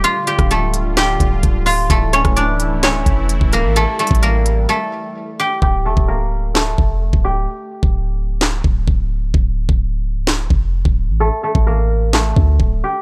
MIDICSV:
0, 0, Header, 1, 5, 480
1, 0, Start_track
1, 0, Tempo, 465116
1, 40, Time_signature, 4, 2, 24, 8
1, 13436, End_track
2, 0, Start_track
2, 0, Title_t, "Guzheng"
2, 0, Program_c, 0, 107
2, 0, Note_on_c, 0, 57, 59
2, 0, Note_on_c, 0, 67, 86
2, 0, Note_on_c, 0, 69, 82
2, 0, Note_on_c, 0, 79, 62
2, 40, Note_on_c, 0, 65, 97
2, 48, Note_on_c, 0, 77, 78
2, 276, Note_off_c, 0, 67, 0
2, 280, Note_on_c, 0, 67, 78
2, 285, Note_off_c, 0, 79, 0
2, 289, Note_on_c, 0, 79, 70
2, 521, Note_off_c, 0, 69, 0
2, 525, Note_on_c, 0, 69, 86
2, 529, Note_off_c, 0, 57, 0
2, 533, Note_on_c, 0, 57, 61
2, 997, Note_off_c, 0, 67, 0
2, 1001, Note_on_c, 0, 67, 86
2, 1005, Note_off_c, 0, 79, 0
2, 1009, Note_on_c, 0, 79, 67
2, 1708, Note_off_c, 0, 65, 0
2, 1712, Note_on_c, 0, 65, 73
2, 1716, Note_off_c, 0, 77, 0
2, 1720, Note_on_c, 0, 77, 61
2, 1957, Note_off_c, 0, 69, 0
2, 1962, Note_on_c, 0, 69, 97
2, 1966, Note_off_c, 0, 57, 0
2, 1970, Note_on_c, 0, 57, 65
2, 2199, Note_on_c, 0, 73, 94
2, 2208, Note_on_c, 0, 61, 76
2, 2439, Note_on_c, 0, 74, 92
2, 2447, Note_on_c, 0, 62, 74
2, 2501, Note_off_c, 0, 61, 0
2, 2501, Note_off_c, 0, 73, 0
2, 2612, Note_off_c, 0, 79, 0
2, 2923, Note_on_c, 0, 73, 84
2, 2931, Note_on_c, 0, 61, 65
2, 2985, Note_off_c, 0, 62, 0
2, 2985, Note_off_c, 0, 74, 0
2, 3430, Note_off_c, 0, 67, 0
2, 3438, Note_off_c, 0, 77, 0
2, 3643, Note_on_c, 0, 70, 82
2, 3651, Note_on_c, 0, 58, 63
2, 3705, Note_off_c, 0, 57, 0
2, 3705, Note_off_c, 0, 69, 0
2, 3882, Note_on_c, 0, 69, 93
2, 3890, Note_on_c, 0, 57, 68
2, 3944, Note_off_c, 0, 58, 0
2, 3944, Note_off_c, 0, 70, 0
2, 4115, Note_off_c, 0, 69, 0
2, 4119, Note_on_c, 0, 69, 83
2, 4123, Note_off_c, 0, 57, 0
2, 4128, Note_on_c, 0, 57, 68
2, 4315, Note_off_c, 0, 65, 0
2, 4360, Note_on_c, 0, 70, 89
2, 4369, Note_on_c, 0, 58, 65
2, 4422, Note_off_c, 0, 57, 0
2, 4422, Note_off_c, 0, 69, 0
2, 4839, Note_on_c, 0, 69, 88
2, 4847, Note_on_c, 0, 57, 68
2, 4896, Note_off_c, 0, 73, 0
2, 4901, Note_off_c, 0, 58, 0
2, 4901, Note_off_c, 0, 70, 0
2, 5568, Note_on_c, 0, 67, 79
2, 5576, Note_on_c, 0, 79, 63
2, 5794, Note_off_c, 0, 67, 0
2, 5798, Note_on_c, 0, 67, 87
2, 5802, Note_off_c, 0, 79, 0
2, 5806, Note_on_c, 0, 79, 66
2, 5922, Note_off_c, 0, 61, 0
2, 6037, Note_off_c, 0, 69, 0
2, 6041, Note_on_c, 0, 69, 81
2, 6046, Note_off_c, 0, 57, 0
2, 6050, Note_on_c, 0, 57, 70
2, 6276, Note_on_c, 0, 70, 88
2, 6284, Note_on_c, 0, 58, 62
2, 6338, Note_off_c, 0, 57, 0
2, 6338, Note_off_c, 0, 69, 0
2, 6754, Note_on_c, 0, 69, 79
2, 6763, Note_on_c, 0, 57, 57
2, 6816, Note_off_c, 0, 58, 0
2, 6816, Note_off_c, 0, 70, 0
2, 7409, Note_off_c, 0, 79, 0
2, 7472, Note_off_c, 0, 67, 0
2, 7476, Note_on_c, 0, 67, 85
2, 7484, Note_on_c, 0, 79, 61
2, 9021, Note_off_c, 0, 69, 0
2, 9087, Note_off_c, 0, 79, 0
2, 9905, Note_off_c, 0, 67, 0
2, 10198, Note_off_c, 0, 57, 0
2, 11562, Note_on_c, 0, 69, 92
2, 11570, Note_on_c, 0, 57, 64
2, 11795, Note_off_c, 0, 69, 0
2, 11800, Note_on_c, 0, 69, 81
2, 11804, Note_off_c, 0, 57, 0
2, 11808, Note_on_c, 0, 57, 65
2, 12040, Note_on_c, 0, 70, 84
2, 12048, Note_on_c, 0, 58, 61
2, 12102, Note_off_c, 0, 57, 0
2, 12102, Note_off_c, 0, 69, 0
2, 12519, Note_on_c, 0, 69, 87
2, 12527, Note_on_c, 0, 57, 65
2, 12581, Note_off_c, 0, 58, 0
2, 12581, Note_off_c, 0, 70, 0
2, 13248, Note_on_c, 0, 67, 78
2, 13256, Note_on_c, 0, 79, 57
2, 13436, Note_off_c, 0, 57, 0
2, 13436, Note_off_c, 0, 67, 0
2, 13436, Note_off_c, 0, 69, 0
2, 13436, Note_off_c, 0, 79, 0
2, 13436, End_track
3, 0, Start_track
3, 0, Title_t, "Analog synth pad"
3, 0, Program_c, 1, 89
3, 0, Note_on_c, 1, 55, 79
3, 40, Note_on_c, 1, 50, 86
3, 40, Note_on_c, 1, 65, 91
3, 1919, Note_off_c, 1, 55, 0
3, 1941, Note_off_c, 1, 50, 0
3, 1941, Note_off_c, 1, 65, 0
3, 1960, Note_on_c, 1, 52, 86
3, 1960, Note_on_c, 1, 57, 76
3, 1960, Note_on_c, 1, 64, 90
3, 3861, Note_off_c, 1, 57, 0
3, 3881, Note_on_c, 1, 55, 77
3, 5762, Note_off_c, 1, 52, 0
3, 5762, Note_off_c, 1, 64, 0
3, 5781, Note_off_c, 1, 55, 0
3, 13436, End_track
4, 0, Start_track
4, 0, Title_t, "808-style bass"
4, 0, Program_c, 2, 38
4, 399, Note_on_c, 2, 26, 101
4, 1206, Note_off_c, 2, 26, 0
4, 1240, Note_on_c, 2, 26, 110
4, 1471, Note_off_c, 2, 26, 0
4, 1480, Note_on_c, 2, 26, 109
4, 1941, Note_off_c, 2, 26, 0
4, 1960, Note_on_c, 2, 26, 115
4, 2306, Note_off_c, 2, 26, 0
4, 2320, Note_on_c, 2, 26, 104
4, 2800, Note_on_c, 2, 25, 103
4, 2815, Note_off_c, 2, 26, 0
4, 2980, Note_on_c, 2, 26, 101
4, 2996, Note_off_c, 2, 25, 0
4, 3151, Note_off_c, 2, 26, 0
4, 3160, Note_on_c, 2, 29, 110
4, 3506, Note_off_c, 2, 29, 0
4, 3520, Note_on_c, 2, 26, 105
4, 3760, Note_on_c, 2, 33, 100
4, 3776, Note_off_c, 2, 26, 0
4, 3988, Note_off_c, 2, 33, 0
4, 4239, Note_on_c, 2, 33, 105
4, 4816, Note_off_c, 2, 33, 0
4, 5800, Note_on_c, 2, 26, 104
4, 6040, Note_on_c, 2, 28, 96
4, 6056, Note_off_c, 2, 26, 0
4, 6154, Note_off_c, 2, 28, 0
4, 6160, Note_on_c, 2, 26, 100
4, 6966, Note_off_c, 2, 26, 0
4, 7000, Note_on_c, 2, 29, 108
4, 7346, Note_off_c, 2, 29, 0
4, 7360, Note_on_c, 2, 26, 98
4, 7706, Note_off_c, 2, 26, 0
4, 8079, Note_on_c, 2, 26, 104
4, 8886, Note_off_c, 2, 26, 0
4, 8920, Note_on_c, 2, 26, 107
4, 9151, Note_off_c, 2, 26, 0
4, 9160, Note_on_c, 2, 26, 106
4, 9621, Note_off_c, 2, 26, 0
4, 9640, Note_on_c, 2, 26, 114
4, 9986, Note_off_c, 2, 26, 0
4, 9999, Note_on_c, 2, 26, 104
4, 10480, Note_on_c, 2, 25, 101
4, 10495, Note_off_c, 2, 26, 0
4, 10661, Note_on_c, 2, 26, 97
4, 10676, Note_off_c, 2, 25, 0
4, 10831, Note_off_c, 2, 26, 0
4, 10840, Note_on_c, 2, 29, 110
4, 11186, Note_off_c, 2, 29, 0
4, 11200, Note_on_c, 2, 26, 105
4, 11440, Note_on_c, 2, 33, 100
4, 11456, Note_off_c, 2, 26, 0
4, 11668, Note_off_c, 2, 33, 0
4, 11920, Note_on_c, 2, 33, 98
4, 12726, Note_off_c, 2, 33, 0
4, 12760, Note_on_c, 2, 38, 105
4, 12991, Note_off_c, 2, 38, 0
4, 13000, Note_on_c, 2, 26, 108
4, 13230, Note_off_c, 2, 26, 0
4, 13436, End_track
5, 0, Start_track
5, 0, Title_t, "Drums"
5, 40, Note_on_c, 9, 42, 73
5, 144, Note_off_c, 9, 42, 0
5, 280, Note_on_c, 9, 42, 73
5, 383, Note_off_c, 9, 42, 0
5, 399, Note_on_c, 9, 36, 103
5, 400, Note_on_c, 9, 37, 96
5, 400, Note_on_c, 9, 42, 47
5, 502, Note_off_c, 9, 36, 0
5, 503, Note_off_c, 9, 37, 0
5, 503, Note_off_c, 9, 42, 0
5, 523, Note_on_c, 9, 42, 87
5, 627, Note_off_c, 9, 42, 0
5, 760, Note_on_c, 9, 42, 85
5, 863, Note_off_c, 9, 42, 0
5, 1000, Note_on_c, 9, 38, 125
5, 1000, Note_on_c, 9, 42, 80
5, 1009, Note_on_c, 9, 39, 106
5, 1104, Note_off_c, 9, 38, 0
5, 1104, Note_off_c, 9, 42, 0
5, 1112, Note_off_c, 9, 39, 0
5, 1240, Note_on_c, 9, 36, 90
5, 1242, Note_on_c, 9, 42, 76
5, 1343, Note_off_c, 9, 36, 0
5, 1345, Note_off_c, 9, 42, 0
5, 1477, Note_on_c, 9, 42, 86
5, 1480, Note_on_c, 9, 36, 97
5, 1581, Note_off_c, 9, 42, 0
5, 1583, Note_off_c, 9, 36, 0
5, 1718, Note_on_c, 9, 46, 67
5, 1821, Note_off_c, 9, 46, 0
5, 1960, Note_on_c, 9, 36, 124
5, 1960, Note_on_c, 9, 42, 69
5, 2063, Note_off_c, 9, 36, 0
5, 2064, Note_off_c, 9, 42, 0
5, 2200, Note_on_c, 9, 42, 75
5, 2303, Note_off_c, 9, 42, 0
5, 2319, Note_on_c, 9, 36, 106
5, 2320, Note_on_c, 9, 37, 94
5, 2320, Note_on_c, 9, 42, 46
5, 2423, Note_off_c, 9, 36, 0
5, 2423, Note_off_c, 9, 37, 0
5, 2423, Note_off_c, 9, 42, 0
5, 2443, Note_on_c, 9, 42, 86
5, 2546, Note_off_c, 9, 42, 0
5, 2680, Note_on_c, 9, 42, 82
5, 2783, Note_off_c, 9, 42, 0
5, 2920, Note_on_c, 9, 38, 123
5, 2920, Note_on_c, 9, 42, 79
5, 2929, Note_on_c, 9, 39, 107
5, 3023, Note_off_c, 9, 38, 0
5, 3024, Note_off_c, 9, 42, 0
5, 3032, Note_off_c, 9, 39, 0
5, 3160, Note_on_c, 9, 36, 89
5, 3162, Note_on_c, 9, 42, 78
5, 3263, Note_off_c, 9, 36, 0
5, 3265, Note_off_c, 9, 42, 0
5, 3398, Note_on_c, 9, 42, 82
5, 3501, Note_off_c, 9, 42, 0
5, 3520, Note_on_c, 9, 36, 100
5, 3623, Note_off_c, 9, 36, 0
5, 3638, Note_on_c, 9, 42, 61
5, 3741, Note_off_c, 9, 42, 0
5, 3881, Note_on_c, 9, 42, 71
5, 3984, Note_off_c, 9, 42, 0
5, 4120, Note_on_c, 9, 42, 46
5, 4200, Note_off_c, 9, 42, 0
5, 4200, Note_on_c, 9, 42, 63
5, 4239, Note_on_c, 9, 36, 103
5, 4280, Note_off_c, 9, 42, 0
5, 4280, Note_on_c, 9, 42, 78
5, 4343, Note_off_c, 9, 36, 0
5, 4363, Note_off_c, 9, 42, 0
5, 4363, Note_on_c, 9, 42, 85
5, 4466, Note_off_c, 9, 42, 0
5, 4600, Note_on_c, 9, 42, 82
5, 4703, Note_off_c, 9, 42, 0
5, 5800, Note_on_c, 9, 36, 116
5, 5903, Note_off_c, 9, 36, 0
5, 6160, Note_on_c, 9, 36, 99
5, 6263, Note_off_c, 9, 36, 0
5, 6761, Note_on_c, 9, 38, 121
5, 6769, Note_on_c, 9, 39, 105
5, 6864, Note_off_c, 9, 38, 0
5, 6872, Note_off_c, 9, 39, 0
5, 7000, Note_on_c, 9, 36, 90
5, 7103, Note_off_c, 9, 36, 0
5, 7360, Note_on_c, 9, 36, 99
5, 7463, Note_off_c, 9, 36, 0
5, 8079, Note_on_c, 9, 36, 101
5, 8183, Note_off_c, 9, 36, 0
5, 8680, Note_on_c, 9, 38, 118
5, 8689, Note_on_c, 9, 39, 102
5, 8783, Note_off_c, 9, 38, 0
5, 8792, Note_off_c, 9, 39, 0
5, 8920, Note_on_c, 9, 36, 91
5, 9023, Note_off_c, 9, 36, 0
5, 9160, Note_on_c, 9, 36, 93
5, 9263, Note_off_c, 9, 36, 0
5, 9640, Note_on_c, 9, 36, 122
5, 9743, Note_off_c, 9, 36, 0
5, 9999, Note_on_c, 9, 36, 104
5, 10102, Note_off_c, 9, 36, 0
5, 10601, Note_on_c, 9, 38, 121
5, 10609, Note_on_c, 9, 39, 104
5, 10704, Note_off_c, 9, 38, 0
5, 10712, Note_off_c, 9, 39, 0
5, 10840, Note_on_c, 9, 36, 86
5, 10944, Note_off_c, 9, 36, 0
5, 11200, Note_on_c, 9, 36, 99
5, 11303, Note_off_c, 9, 36, 0
5, 11920, Note_on_c, 9, 36, 103
5, 12023, Note_off_c, 9, 36, 0
5, 12521, Note_on_c, 9, 38, 122
5, 12530, Note_on_c, 9, 39, 101
5, 12624, Note_off_c, 9, 38, 0
5, 12633, Note_off_c, 9, 39, 0
5, 12761, Note_on_c, 9, 36, 90
5, 12864, Note_off_c, 9, 36, 0
5, 13000, Note_on_c, 9, 36, 89
5, 13103, Note_off_c, 9, 36, 0
5, 13436, End_track
0, 0, End_of_file